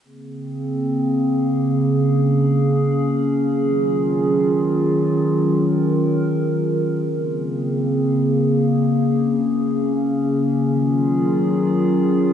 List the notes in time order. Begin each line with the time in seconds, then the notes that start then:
0.04 C#3 A#3 C4 G#4
1.81 C#4
3.57 D#3 F#3 F4
5.34 A#4
7.10 C#3 A#3 C4 G#4
8.87 C#4
10.63 D#3 F#3 F4 G#4